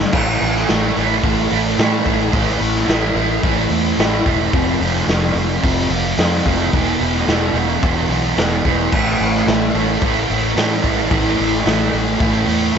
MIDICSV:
0, 0, Header, 1, 4, 480
1, 0, Start_track
1, 0, Key_signature, 0, "minor"
1, 0, Tempo, 548948
1, 111, Time_signature, 4, 2, 24, 8
1, 11176, End_track
2, 0, Start_track
2, 0, Title_t, "Distorted electric guitar"
2, 0, Program_c, 0, 30
2, 0, Note_on_c, 0, 43, 68
2, 0, Note_on_c, 0, 50, 74
2, 0, Note_on_c, 0, 55, 82
2, 96, Note_off_c, 0, 55, 0
2, 101, Note_off_c, 0, 50, 0
2, 104, Note_on_c, 0, 45, 96
2, 108, Note_off_c, 0, 43, 0
2, 115, Note_on_c, 0, 52, 113
2, 125, Note_on_c, 0, 57, 109
2, 352, Note_off_c, 0, 57, 0
2, 355, Note_on_c, 0, 57, 77
2, 367, Note_off_c, 0, 52, 0
2, 370, Note_on_c, 0, 52, 62
2, 589, Note_off_c, 0, 45, 0
2, 593, Note_on_c, 0, 45, 84
2, 601, Note_off_c, 0, 52, 0
2, 605, Note_on_c, 0, 52, 83
2, 608, Note_off_c, 0, 57, 0
2, 612, Note_on_c, 0, 57, 90
2, 840, Note_off_c, 0, 57, 0
2, 844, Note_on_c, 0, 57, 74
2, 860, Note_off_c, 0, 52, 0
2, 863, Note_on_c, 0, 52, 62
2, 1081, Note_off_c, 0, 45, 0
2, 1081, Note_off_c, 0, 52, 0
2, 1084, Note_on_c, 0, 45, 89
2, 1091, Note_on_c, 0, 52, 106
2, 1097, Note_off_c, 0, 57, 0
2, 1101, Note_on_c, 0, 57, 112
2, 1319, Note_off_c, 0, 57, 0
2, 1322, Note_on_c, 0, 57, 79
2, 1332, Note_off_c, 0, 52, 0
2, 1343, Note_on_c, 0, 52, 63
2, 1546, Note_off_c, 0, 45, 0
2, 1556, Note_on_c, 0, 45, 73
2, 1558, Note_off_c, 0, 52, 0
2, 1569, Note_on_c, 0, 52, 90
2, 1576, Note_off_c, 0, 57, 0
2, 1579, Note_on_c, 0, 57, 83
2, 1787, Note_off_c, 0, 57, 0
2, 1791, Note_on_c, 0, 57, 86
2, 1805, Note_off_c, 0, 52, 0
2, 1816, Note_on_c, 0, 52, 59
2, 2022, Note_off_c, 0, 45, 0
2, 2031, Note_off_c, 0, 52, 0
2, 2032, Note_on_c, 0, 45, 105
2, 2042, Note_on_c, 0, 52, 107
2, 2044, Note_off_c, 0, 57, 0
2, 2047, Note_on_c, 0, 57, 120
2, 2264, Note_off_c, 0, 57, 0
2, 2267, Note_on_c, 0, 57, 81
2, 2275, Note_off_c, 0, 52, 0
2, 2286, Note_on_c, 0, 52, 58
2, 2485, Note_off_c, 0, 45, 0
2, 2496, Note_on_c, 0, 45, 83
2, 2502, Note_off_c, 0, 52, 0
2, 2512, Note_on_c, 0, 52, 90
2, 2514, Note_off_c, 0, 57, 0
2, 2518, Note_on_c, 0, 57, 94
2, 2749, Note_off_c, 0, 57, 0
2, 2752, Note_on_c, 0, 57, 82
2, 2760, Note_off_c, 0, 52, 0
2, 2771, Note_on_c, 0, 52, 68
2, 2986, Note_off_c, 0, 45, 0
2, 2994, Note_off_c, 0, 52, 0
2, 2995, Note_on_c, 0, 45, 93
2, 3001, Note_off_c, 0, 57, 0
2, 3005, Note_on_c, 0, 52, 105
2, 3012, Note_on_c, 0, 57, 107
2, 3226, Note_off_c, 0, 57, 0
2, 3236, Note_on_c, 0, 57, 72
2, 3244, Note_off_c, 0, 52, 0
2, 3255, Note_on_c, 0, 52, 63
2, 3461, Note_off_c, 0, 45, 0
2, 3469, Note_off_c, 0, 52, 0
2, 3472, Note_on_c, 0, 45, 82
2, 3479, Note_on_c, 0, 52, 81
2, 3483, Note_off_c, 0, 57, 0
2, 3493, Note_on_c, 0, 57, 82
2, 3713, Note_off_c, 0, 57, 0
2, 3723, Note_on_c, 0, 57, 85
2, 3731, Note_off_c, 0, 52, 0
2, 3741, Note_on_c, 0, 52, 68
2, 3940, Note_off_c, 0, 45, 0
2, 3945, Note_off_c, 0, 57, 0
2, 3954, Note_off_c, 0, 52, 0
2, 3961, Note_on_c, 0, 41, 99
2, 3971, Note_on_c, 0, 48, 109
2, 3978, Note_on_c, 0, 53, 102
2, 4195, Note_off_c, 0, 53, 0
2, 4206, Note_on_c, 0, 53, 81
2, 4219, Note_off_c, 0, 48, 0
2, 4230, Note_on_c, 0, 48, 62
2, 4436, Note_off_c, 0, 41, 0
2, 4445, Note_off_c, 0, 48, 0
2, 4446, Note_on_c, 0, 41, 90
2, 4455, Note_on_c, 0, 48, 78
2, 4456, Note_off_c, 0, 53, 0
2, 4466, Note_on_c, 0, 53, 83
2, 4671, Note_off_c, 0, 53, 0
2, 4682, Note_on_c, 0, 53, 83
2, 4694, Note_off_c, 0, 48, 0
2, 4705, Note_on_c, 0, 48, 74
2, 4902, Note_off_c, 0, 41, 0
2, 4907, Note_off_c, 0, 48, 0
2, 4912, Note_on_c, 0, 41, 93
2, 4917, Note_off_c, 0, 53, 0
2, 4918, Note_on_c, 0, 48, 91
2, 4928, Note_on_c, 0, 53, 117
2, 5147, Note_off_c, 0, 53, 0
2, 5158, Note_on_c, 0, 53, 72
2, 5169, Note_off_c, 0, 48, 0
2, 5180, Note_on_c, 0, 48, 63
2, 5391, Note_off_c, 0, 41, 0
2, 5401, Note_on_c, 0, 41, 85
2, 5406, Note_off_c, 0, 48, 0
2, 5410, Note_off_c, 0, 53, 0
2, 5416, Note_on_c, 0, 48, 88
2, 5421, Note_on_c, 0, 53, 93
2, 5634, Note_off_c, 0, 53, 0
2, 5644, Note_on_c, 0, 53, 81
2, 5657, Note_off_c, 0, 48, 0
2, 5668, Note_on_c, 0, 48, 72
2, 5864, Note_off_c, 0, 41, 0
2, 5866, Note_off_c, 0, 53, 0
2, 5877, Note_off_c, 0, 48, 0
2, 5883, Note_on_c, 0, 40, 105
2, 5893, Note_on_c, 0, 47, 109
2, 5902, Note_on_c, 0, 52, 118
2, 6133, Note_off_c, 0, 52, 0
2, 6136, Note_on_c, 0, 52, 72
2, 6140, Note_off_c, 0, 47, 0
2, 6150, Note_on_c, 0, 47, 62
2, 6355, Note_off_c, 0, 40, 0
2, 6366, Note_on_c, 0, 40, 76
2, 6367, Note_off_c, 0, 47, 0
2, 6378, Note_on_c, 0, 47, 88
2, 6385, Note_off_c, 0, 52, 0
2, 6388, Note_on_c, 0, 52, 87
2, 6596, Note_off_c, 0, 52, 0
2, 6599, Note_on_c, 0, 52, 80
2, 6611, Note_off_c, 0, 47, 0
2, 6622, Note_on_c, 0, 47, 74
2, 6833, Note_off_c, 0, 40, 0
2, 6840, Note_off_c, 0, 47, 0
2, 6843, Note_on_c, 0, 40, 93
2, 6850, Note_on_c, 0, 47, 107
2, 6855, Note_off_c, 0, 52, 0
2, 6859, Note_on_c, 0, 52, 115
2, 7082, Note_off_c, 0, 52, 0
2, 7086, Note_on_c, 0, 52, 72
2, 7098, Note_off_c, 0, 47, 0
2, 7108, Note_on_c, 0, 47, 62
2, 7311, Note_off_c, 0, 40, 0
2, 7321, Note_on_c, 0, 40, 82
2, 7326, Note_off_c, 0, 47, 0
2, 7336, Note_on_c, 0, 47, 83
2, 7339, Note_off_c, 0, 52, 0
2, 7343, Note_on_c, 0, 52, 85
2, 7569, Note_off_c, 0, 52, 0
2, 7573, Note_on_c, 0, 52, 79
2, 7582, Note_off_c, 0, 47, 0
2, 7593, Note_on_c, 0, 47, 67
2, 7783, Note_off_c, 0, 40, 0
2, 7799, Note_off_c, 0, 47, 0
2, 7803, Note_on_c, 0, 45, 101
2, 7813, Note_off_c, 0, 52, 0
2, 7817, Note_on_c, 0, 52, 94
2, 7823, Note_on_c, 0, 57, 119
2, 8042, Note_off_c, 0, 57, 0
2, 8045, Note_on_c, 0, 57, 78
2, 8063, Note_off_c, 0, 52, 0
2, 8067, Note_on_c, 0, 52, 65
2, 8282, Note_off_c, 0, 45, 0
2, 8286, Note_on_c, 0, 45, 85
2, 8294, Note_off_c, 0, 52, 0
2, 8297, Note_on_c, 0, 52, 80
2, 8303, Note_off_c, 0, 57, 0
2, 8306, Note_on_c, 0, 57, 83
2, 8524, Note_off_c, 0, 57, 0
2, 8527, Note_on_c, 0, 57, 85
2, 8544, Note_off_c, 0, 52, 0
2, 8547, Note_on_c, 0, 52, 60
2, 8759, Note_off_c, 0, 45, 0
2, 8762, Note_on_c, 0, 45, 96
2, 8766, Note_off_c, 0, 52, 0
2, 8777, Note_on_c, 0, 52, 100
2, 8784, Note_off_c, 0, 57, 0
2, 8788, Note_on_c, 0, 57, 114
2, 8991, Note_off_c, 0, 57, 0
2, 8994, Note_on_c, 0, 57, 64
2, 9006, Note_off_c, 0, 52, 0
2, 9017, Note_on_c, 0, 52, 57
2, 9212, Note_off_c, 0, 45, 0
2, 9223, Note_off_c, 0, 52, 0
2, 9223, Note_on_c, 0, 45, 81
2, 9233, Note_on_c, 0, 52, 84
2, 9243, Note_off_c, 0, 57, 0
2, 9247, Note_on_c, 0, 57, 96
2, 9464, Note_off_c, 0, 57, 0
2, 9467, Note_on_c, 0, 57, 80
2, 9478, Note_off_c, 0, 52, 0
2, 9488, Note_on_c, 0, 52, 66
2, 9696, Note_off_c, 0, 45, 0
2, 9703, Note_off_c, 0, 52, 0
2, 9706, Note_on_c, 0, 45, 110
2, 9714, Note_on_c, 0, 52, 105
2, 9717, Note_off_c, 0, 57, 0
2, 9720, Note_on_c, 0, 57, 111
2, 9933, Note_off_c, 0, 57, 0
2, 9936, Note_on_c, 0, 57, 73
2, 9939, Note_off_c, 0, 52, 0
2, 9949, Note_on_c, 0, 52, 60
2, 10162, Note_off_c, 0, 45, 0
2, 10173, Note_on_c, 0, 45, 84
2, 10174, Note_off_c, 0, 52, 0
2, 10184, Note_on_c, 0, 52, 89
2, 10186, Note_off_c, 0, 57, 0
2, 10189, Note_on_c, 0, 57, 83
2, 10410, Note_off_c, 0, 57, 0
2, 10414, Note_on_c, 0, 57, 76
2, 10423, Note_off_c, 0, 52, 0
2, 10434, Note_on_c, 0, 52, 61
2, 10642, Note_off_c, 0, 45, 0
2, 10647, Note_off_c, 0, 52, 0
2, 10653, Note_on_c, 0, 45, 104
2, 10657, Note_on_c, 0, 52, 103
2, 10658, Note_off_c, 0, 57, 0
2, 10669, Note_on_c, 0, 57, 108
2, 10875, Note_off_c, 0, 57, 0
2, 10886, Note_on_c, 0, 57, 74
2, 10895, Note_off_c, 0, 52, 0
2, 10905, Note_on_c, 0, 52, 64
2, 11123, Note_off_c, 0, 45, 0
2, 11134, Note_on_c, 0, 45, 87
2, 11135, Note_off_c, 0, 52, 0
2, 11143, Note_off_c, 0, 57, 0
2, 11146, Note_on_c, 0, 52, 75
2, 11176, Note_off_c, 0, 45, 0
2, 11176, Note_off_c, 0, 52, 0
2, 11176, End_track
3, 0, Start_track
3, 0, Title_t, "Fingered electric bass"
3, 0, Program_c, 1, 33
3, 120, Note_on_c, 1, 33, 92
3, 316, Note_off_c, 1, 33, 0
3, 366, Note_on_c, 1, 33, 100
3, 560, Note_off_c, 1, 33, 0
3, 611, Note_on_c, 1, 33, 99
3, 803, Note_off_c, 1, 33, 0
3, 846, Note_on_c, 1, 33, 94
3, 1040, Note_off_c, 1, 33, 0
3, 1080, Note_on_c, 1, 33, 84
3, 1277, Note_off_c, 1, 33, 0
3, 1326, Note_on_c, 1, 33, 100
3, 1520, Note_off_c, 1, 33, 0
3, 1557, Note_on_c, 1, 45, 91
3, 1755, Note_off_c, 1, 45, 0
3, 1804, Note_on_c, 1, 33, 93
3, 1999, Note_off_c, 1, 33, 0
3, 2040, Note_on_c, 1, 33, 93
3, 2237, Note_off_c, 1, 33, 0
3, 2283, Note_on_c, 1, 33, 92
3, 2479, Note_off_c, 1, 33, 0
3, 2516, Note_on_c, 1, 33, 96
3, 2715, Note_off_c, 1, 33, 0
3, 2755, Note_on_c, 1, 33, 97
3, 2954, Note_off_c, 1, 33, 0
3, 3005, Note_on_c, 1, 33, 89
3, 3200, Note_off_c, 1, 33, 0
3, 3239, Note_on_c, 1, 40, 102
3, 3437, Note_off_c, 1, 40, 0
3, 3476, Note_on_c, 1, 33, 88
3, 3675, Note_off_c, 1, 33, 0
3, 3728, Note_on_c, 1, 28, 95
3, 3922, Note_off_c, 1, 28, 0
3, 3964, Note_on_c, 1, 29, 87
3, 4160, Note_off_c, 1, 29, 0
3, 4198, Note_on_c, 1, 29, 97
3, 4396, Note_off_c, 1, 29, 0
3, 4441, Note_on_c, 1, 29, 101
3, 4639, Note_off_c, 1, 29, 0
3, 4678, Note_on_c, 1, 29, 83
3, 4877, Note_off_c, 1, 29, 0
3, 4930, Note_on_c, 1, 29, 92
3, 5123, Note_off_c, 1, 29, 0
3, 5164, Note_on_c, 1, 29, 103
3, 5360, Note_off_c, 1, 29, 0
3, 5401, Note_on_c, 1, 41, 90
3, 5598, Note_off_c, 1, 41, 0
3, 5650, Note_on_c, 1, 29, 94
3, 5844, Note_off_c, 1, 29, 0
3, 5887, Note_on_c, 1, 28, 91
3, 6082, Note_off_c, 1, 28, 0
3, 6126, Note_on_c, 1, 28, 104
3, 6321, Note_off_c, 1, 28, 0
3, 6363, Note_on_c, 1, 28, 100
3, 6559, Note_off_c, 1, 28, 0
3, 6591, Note_on_c, 1, 28, 90
3, 6792, Note_off_c, 1, 28, 0
3, 6847, Note_on_c, 1, 28, 87
3, 7041, Note_off_c, 1, 28, 0
3, 7075, Note_on_c, 1, 35, 102
3, 7274, Note_off_c, 1, 35, 0
3, 7318, Note_on_c, 1, 28, 85
3, 7516, Note_off_c, 1, 28, 0
3, 7569, Note_on_c, 1, 28, 90
3, 7762, Note_off_c, 1, 28, 0
3, 7807, Note_on_c, 1, 33, 94
3, 8001, Note_off_c, 1, 33, 0
3, 8047, Note_on_c, 1, 33, 95
3, 8241, Note_off_c, 1, 33, 0
3, 8280, Note_on_c, 1, 33, 99
3, 8476, Note_off_c, 1, 33, 0
3, 8514, Note_on_c, 1, 33, 92
3, 8712, Note_off_c, 1, 33, 0
3, 8763, Note_on_c, 1, 33, 92
3, 8958, Note_off_c, 1, 33, 0
3, 9006, Note_on_c, 1, 33, 90
3, 9199, Note_off_c, 1, 33, 0
3, 9240, Note_on_c, 1, 45, 97
3, 9435, Note_off_c, 1, 45, 0
3, 9479, Note_on_c, 1, 33, 94
3, 9675, Note_off_c, 1, 33, 0
3, 9715, Note_on_c, 1, 33, 92
3, 9912, Note_off_c, 1, 33, 0
3, 9966, Note_on_c, 1, 33, 92
3, 10158, Note_off_c, 1, 33, 0
3, 10195, Note_on_c, 1, 33, 103
3, 10391, Note_off_c, 1, 33, 0
3, 10430, Note_on_c, 1, 33, 89
3, 10628, Note_off_c, 1, 33, 0
3, 10672, Note_on_c, 1, 33, 95
3, 10869, Note_off_c, 1, 33, 0
3, 10908, Note_on_c, 1, 40, 96
3, 11106, Note_off_c, 1, 40, 0
3, 11176, End_track
4, 0, Start_track
4, 0, Title_t, "Drums"
4, 0, Note_on_c, 9, 38, 81
4, 86, Note_off_c, 9, 38, 0
4, 110, Note_on_c, 9, 49, 127
4, 117, Note_on_c, 9, 36, 124
4, 198, Note_off_c, 9, 49, 0
4, 204, Note_off_c, 9, 36, 0
4, 357, Note_on_c, 9, 46, 66
4, 445, Note_off_c, 9, 46, 0
4, 491, Note_on_c, 9, 38, 35
4, 579, Note_off_c, 9, 38, 0
4, 593, Note_on_c, 9, 46, 86
4, 603, Note_on_c, 9, 38, 110
4, 681, Note_off_c, 9, 46, 0
4, 690, Note_off_c, 9, 38, 0
4, 840, Note_on_c, 9, 46, 68
4, 928, Note_off_c, 9, 46, 0
4, 1079, Note_on_c, 9, 46, 95
4, 1080, Note_on_c, 9, 36, 111
4, 1166, Note_off_c, 9, 46, 0
4, 1167, Note_off_c, 9, 36, 0
4, 1316, Note_on_c, 9, 46, 76
4, 1404, Note_off_c, 9, 46, 0
4, 1558, Note_on_c, 9, 46, 94
4, 1567, Note_on_c, 9, 38, 127
4, 1645, Note_off_c, 9, 46, 0
4, 1655, Note_off_c, 9, 38, 0
4, 1799, Note_on_c, 9, 46, 64
4, 1800, Note_on_c, 9, 36, 80
4, 1886, Note_off_c, 9, 46, 0
4, 1887, Note_off_c, 9, 36, 0
4, 2039, Note_on_c, 9, 46, 93
4, 2040, Note_on_c, 9, 36, 117
4, 2127, Note_off_c, 9, 46, 0
4, 2128, Note_off_c, 9, 36, 0
4, 2284, Note_on_c, 9, 46, 65
4, 2372, Note_off_c, 9, 46, 0
4, 2414, Note_on_c, 9, 38, 35
4, 2501, Note_off_c, 9, 38, 0
4, 2522, Note_on_c, 9, 46, 78
4, 2532, Note_on_c, 9, 38, 116
4, 2610, Note_off_c, 9, 46, 0
4, 2619, Note_off_c, 9, 38, 0
4, 2768, Note_on_c, 9, 46, 60
4, 2856, Note_off_c, 9, 46, 0
4, 3003, Note_on_c, 9, 36, 126
4, 3006, Note_on_c, 9, 46, 85
4, 3091, Note_off_c, 9, 36, 0
4, 3093, Note_off_c, 9, 46, 0
4, 3245, Note_on_c, 9, 46, 64
4, 3332, Note_off_c, 9, 46, 0
4, 3487, Note_on_c, 9, 46, 93
4, 3497, Note_on_c, 9, 38, 126
4, 3574, Note_off_c, 9, 46, 0
4, 3584, Note_off_c, 9, 38, 0
4, 3725, Note_on_c, 9, 36, 93
4, 3726, Note_on_c, 9, 46, 68
4, 3813, Note_off_c, 9, 36, 0
4, 3813, Note_off_c, 9, 46, 0
4, 3962, Note_on_c, 9, 46, 84
4, 3965, Note_on_c, 9, 36, 122
4, 4050, Note_off_c, 9, 46, 0
4, 4052, Note_off_c, 9, 36, 0
4, 4207, Note_on_c, 9, 46, 67
4, 4295, Note_off_c, 9, 46, 0
4, 4337, Note_on_c, 9, 38, 35
4, 4424, Note_off_c, 9, 38, 0
4, 4443, Note_on_c, 9, 46, 89
4, 4453, Note_on_c, 9, 38, 104
4, 4531, Note_off_c, 9, 46, 0
4, 4540, Note_off_c, 9, 38, 0
4, 4689, Note_on_c, 9, 46, 63
4, 4776, Note_off_c, 9, 46, 0
4, 4928, Note_on_c, 9, 36, 119
4, 4928, Note_on_c, 9, 46, 100
4, 5015, Note_off_c, 9, 36, 0
4, 5015, Note_off_c, 9, 46, 0
4, 5164, Note_on_c, 9, 46, 71
4, 5252, Note_off_c, 9, 46, 0
4, 5401, Note_on_c, 9, 46, 106
4, 5411, Note_on_c, 9, 38, 127
4, 5489, Note_off_c, 9, 46, 0
4, 5498, Note_off_c, 9, 38, 0
4, 5647, Note_on_c, 9, 36, 88
4, 5647, Note_on_c, 9, 46, 68
4, 5734, Note_off_c, 9, 36, 0
4, 5734, Note_off_c, 9, 46, 0
4, 5888, Note_on_c, 9, 46, 93
4, 5889, Note_on_c, 9, 36, 116
4, 5975, Note_off_c, 9, 46, 0
4, 5976, Note_off_c, 9, 36, 0
4, 6129, Note_on_c, 9, 46, 58
4, 6216, Note_off_c, 9, 46, 0
4, 6255, Note_on_c, 9, 38, 35
4, 6343, Note_off_c, 9, 38, 0
4, 6361, Note_on_c, 9, 46, 83
4, 6371, Note_on_c, 9, 38, 116
4, 6449, Note_off_c, 9, 46, 0
4, 6458, Note_off_c, 9, 38, 0
4, 6605, Note_on_c, 9, 46, 64
4, 6692, Note_off_c, 9, 46, 0
4, 6841, Note_on_c, 9, 46, 84
4, 6846, Note_on_c, 9, 36, 127
4, 6928, Note_off_c, 9, 46, 0
4, 6933, Note_off_c, 9, 36, 0
4, 7086, Note_on_c, 9, 46, 64
4, 7173, Note_off_c, 9, 46, 0
4, 7320, Note_on_c, 9, 46, 96
4, 7329, Note_on_c, 9, 38, 127
4, 7407, Note_off_c, 9, 46, 0
4, 7417, Note_off_c, 9, 38, 0
4, 7564, Note_on_c, 9, 46, 60
4, 7565, Note_on_c, 9, 36, 82
4, 7651, Note_off_c, 9, 46, 0
4, 7652, Note_off_c, 9, 36, 0
4, 7801, Note_on_c, 9, 49, 115
4, 7805, Note_on_c, 9, 36, 127
4, 7889, Note_off_c, 9, 49, 0
4, 7892, Note_off_c, 9, 36, 0
4, 8038, Note_on_c, 9, 46, 68
4, 8126, Note_off_c, 9, 46, 0
4, 8171, Note_on_c, 9, 38, 35
4, 8259, Note_off_c, 9, 38, 0
4, 8281, Note_on_c, 9, 46, 84
4, 8291, Note_on_c, 9, 38, 112
4, 8368, Note_off_c, 9, 46, 0
4, 8378, Note_off_c, 9, 38, 0
4, 8523, Note_on_c, 9, 46, 64
4, 8611, Note_off_c, 9, 46, 0
4, 8760, Note_on_c, 9, 46, 98
4, 8761, Note_on_c, 9, 36, 126
4, 8847, Note_off_c, 9, 46, 0
4, 8849, Note_off_c, 9, 36, 0
4, 9001, Note_on_c, 9, 46, 71
4, 9089, Note_off_c, 9, 46, 0
4, 9239, Note_on_c, 9, 46, 108
4, 9249, Note_on_c, 9, 38, 127
4, 9327, Note_off_c, 9, 46, 0
4, 9336, Note_off_c, 9, 38, 0
4, 9478, Note_on_c, 9, 36, 84
4, 9478, Note_on_c, 9, 46, 68
4, 9565, Note_off_c, 9, 36, 0
4, 9566, Note_off_c, 9, 46, 0
4, 9713, Note_on_c, 9, 46, 98
4, 9716, Note_on_c, 9, 36, 121
4, 9801, Note_off_c, 9, 46, 0
4, 9803, Note_off_c, 9, 36, 0
4, 9951, Note_on_c, 9, 46, 69
4, 10039, Note_off_c, 9, 46, 0
4, 10083, Note_on_c, 9, 38, 33
4, 10170, Note_off_c, 9, 38, 0
4, 10194, Note_on_c, 9, 46, 89
4, 10204, Note_on_c, 9, 38, 117
4, 10282, Note_off_c, 9, 46, 0
4, 10291, Note_off_c, 9, 38, 0
4, 10432, Note_on_c, 9, 46, 60
4, 10520, Note_off_c, 9, 46, 0
4, 10666, Note_on_c, 9, 46, 93
4, 10671, Note_on_c, 9, 36, 118
4, 10754, Note_off_c, 9, 46, 0
4, 10758, Note_off_c, 9, 36, 0
4, 10913, Note_on_c, 9, 46, 69
4, 11001, Note_off_c, 9, 46, 0
4, 11176, End_track
0, 0, End_of_file